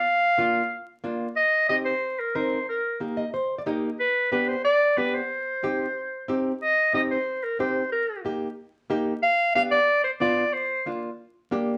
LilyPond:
<<
  \new Staff \with { instrumentName = "Clarinet" } { \time 4/4 \key c \minor \tempo 4 = 183 f''2~ f''8 r4. | ees''4 ees''8 c''4 bes'8 c''4 | bes'4 r2. | b'4 b'8 c''8 d''4 b'8 c''8~ |
c''2.~ c''8 r8 | ees''4 ees''8 c''4 bes'8 c''4 | bes'4 r2. | f''4 f''8 d''4 c''8 d''4 |
c''4 r2. | }
  \new Staff \with { instrumentName = "Nylon-string guitar" } { \time 4/4 \key c \minor << { r1 | r1 | r4. ees''8 c''8. d''16 ees''4 | r1 |
r1 | r1 | r1 | r1 |
r1 | } \\ { r4 <bes d' f'>8 r4. <bes d' f'>8 r8 | r4 <c' ees' g'>8 r4. <c' ees' bes'>8 r8 | r4 <bes ees' g'>8 r4. <bes ees' g'>8 r8 | r4 <b d' g'>8 r4. <b d' g'>8 r8 |
r4 <c' ees' g'>8 r4. <c' ees' g'>8 r8 | r4 <c' ees' g'>8 r4. <c' ees' g'>8 r8 | r4 <bes ees' g'>8 r4. <bes ees' g'>8 r8 | r4 <b d' g'>8 r4. <b d' f'>8 r8 |
r4 <bes d' f'>8 r4. <bes d' g'>8 r8 | } >> }
>>